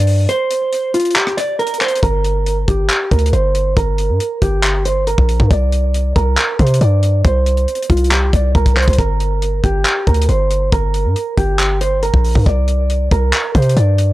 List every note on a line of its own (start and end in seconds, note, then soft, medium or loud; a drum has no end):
0.00 0.27 G2 loud
0.00 0.26 D5 medium
0.07 open hi-hat medium
0.29 0.90 C5 loud
0.29 closed hi-hat medium
0.51 closed hi-hat medium
0.73 closed hi-hat medium
0.94 1.13 F4 medium
0.94 closed hi-hat medium
1.00 closed hi-hat medium
1.05 closed hi-hat medium
1.11 closed hi-hat medium
1.16 1.35 G4 medium
1.16 clap loud
1.16 closed hi-hat medium
1.27 cross-stick loud
1.37 1.57 D5 medium
1.37 cross-stick medium
1.37 closed hi-hat loud
1.59 1.78 A#4 medium
1.59 closed hi-hat soft
1.67 closed hi-hat medium
1.74 closed hi-hat medium
1.81 2.00 C5 medium
1.81 clap medium
1.81 closed hi-hat medium
1.88 closed hi-hat medium
1.96 closed hi-hat medium
2.03 2.65 G1 loud
2.03 2.64 A#4 loud
2.03 kick loud
2.03 closed hi-hat medium
2.24 closed hi-hat medium
2.46 closed hi-hat medium
2.68 2.89 G1 loud
2.68 3.09 G4 medium
2.68 kick medium
2.68 closed hi-hat medium
2.90 clap loud
2.90 closed hi-hat medium
3.11 3.32 D2 loud
3.11 3.31 A#4 medium
3.11 kick medium
3.11 closed hi-hat medium
3.19 closed hi-hat medium
3.26 closed hi-hat medium
3.33 3.75 G1 loud
3.33 3.74 C5 medium
3.33 closed hi-hat medium
3.55 closed hi-hat medium
3.77 4.11 G1 loud
3.77 4.38 A#4 medium
3.77 kick loud
3.77 closed hi-hat medium
3.98 closed hi-hat medium
4.09 4.20 G2 loud
4.20 closed hi-hat medium
4.42 5.15 G1 loud
4.42 4.83 G4 medium
4.42 kick medium
4.42 closed hi-hat medium
4.64 clap loud
4.64 closed hi-hat medium
4.85 5.05 C5 medium
4.85 closed hi-hat loud
5.07 5.48 A#4 medium
5.07 closed hi-hat medium
5.18 5.39 A#1 loud
5.18 kick loud
5.29 closed hi-hat medium
5.40 5.50 G2 loud
5.40 kick loud
5.51 6.13 C2 loud
5.51 6.12 D5 loud
5.51 kick loud
5.51 closed hi-hat medium
5.72 closed hi-hat medium
5.94 closed hi-hat medium
6.16 6.37 C2 loud
6.16 6.57 A#4 medium
6.16 kick medium
6.16 closed hi-hat medium
6.38 clap loud
6.38 closed hi-hat medium
6.59 6.80 C3 loud
6.59 6.78 C5 medium
6.59 kick medium
6.59 closed hi-hat medium
6.67 closed hi-hat medium
6.74 closed hi-hat medium
6.81 7.23 G2 loud
6.81 7.22 D5 medium
6.81 closed hi-hat medium
7.03 closed hi-hat medium
7.25 7.66 C2 loud
7.25 7.86 C5 medium
7.25 kick loud
7.25 closed hi-hat medium
7.46 closed hi-hat medium
7.57 closed hi-hat soft
7.68 closed hi-hat medium
7.75 closed hi-hat medium
7.83 closed hi-hat medium
7.90 8.31 C2 loud
7.90 8.09 F4 medium
7.90 kick medium
7.90 closed hi-hat medium
7.97 closed hi-hat medium
8.04 closed hi-hat medium
8.11 8.31 G4 medium
8.11 clap loud
8.11 closed hi-hat medium
8.33 8.54 C2 loud
8.33 8.52 D5 medium
8.33 kick medium
8.33 closed hi-hat medium
8.55 8.86 C2 loud
8.55 8.74 A#4 medium
8.55 kick loud
8.55 closed hi-hat soft
8.66 kick loud
8.66 closed hi-hat medium
8.77 8.96 C5 medium
8.77 clap medium
8.77 closed hi-hat soft
8.77 open hi-hat medium
8.82 closed hi-hat medium
8.88 8.98 C2 loud
8.88 kick loud
8.88 closed hi-hat medium
8.93 closed hi-hat medium
8.98 9.61 G1 loud
8.98 9.60 A#4 loud
8.98 kick loud
9.20 closed hi-hat medium
9.42 closed hi-hat medium
9.64 9.85 G1 loud
9.64 10.04 G4 medium
9.64 kick medium
9.64 closed hi-hat medium
9.85 clap loud
9.85 closed hi-hat medium
10.07 10.28 D2 loud
10.07 10.26 A#4 medium
10.07 kick medium
10.07 closed hi-hat medium
10.14 closed hi-hat medium
10.22 closed hi-hat medium
10.29 10.71 G1 loud
10.29 10.70 C5 medium
10.29 closed hi-hat medium
10.51 closed hi-hat medium
10.72 11.06 G1 loud
10.72 11.34 A#4 loud
10.72 kick loud
10.72 closed hi-hat medium
10.94 closed hi-hat medium
11.05 11.15 G2 loud
11.16 closed hi-hat medium
11.37 12.11 G1 loud
11.37 11.78 G4 medium
11.37 kick loud
11.37 closed hi-hat medium
11.59 clap loud
11.59 closed hi-hat medium
11.81 12.00 C5 medium
11.81 closed hi-hat medium
12.03 12.44 A#4 medium
12.03 closed hi-hat medium
12.14 12.35 A#1 loud
12.14 kick loud
12.25 open hi-hat medium
12.35 12.46 G2 loud
12.35 kick loud
12.46 13.09 C2 loud
12.46 13.08 D5 loud
12.46 kick loud
12.46 closed hi-hat medium
12.68 closed hi-hat medium
12.90 closed hi-hat medium
13.11 13.32 C2 loud
13.11 13.52 A#4 medium
13.11 kick loud
13.11 closed hi-hat medium
13.33 clap loud
13.33 closed hi-hat medium
13.55 13.76 C3 loud
13.55 13.74 C5 medium
13.55 kick medium
13.55 closed hi-hat medium
13.62 closed hi-hat medium
13.69 closed hi-hat medium
13.77 14.13 G2 loud
13.77 14.13 D5 medium
13.77 closed hi-hat medium
13.98 closed hi-hat medium